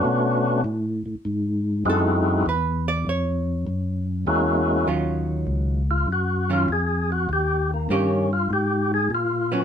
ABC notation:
X:1
M:4/4
L:1/8
Q:"Swing" 1/4=99
K:F#m
V:1 name="Tonewheel organ"
[A,B,CDF]2 z4 [G,^B,^DEF]2 | z6 [G,^A,CEF]2 | [K:Ebm] z3 F G F A G | =G B, D F G A F D |]
V:2 name="Hollow-body jazz guitar"
z6 A2 | B d c3 z3 | [K:Ebm] [E,G,DF]3 z2 [E,G,DF] z2 | z2 [E,B,D=G] z4 [_G,CD] |]
V:3 name="Tonewheel organ" clef=bass
B,,2 A,, A,, G,,2 F,,2 | E,,2 ^E,,2 F,,2 =E,,2 | [K:Ebm] E,,2 D,,2 G,,2 F,,2 | E,,2 =G,,2 A,,2 B,,2 |]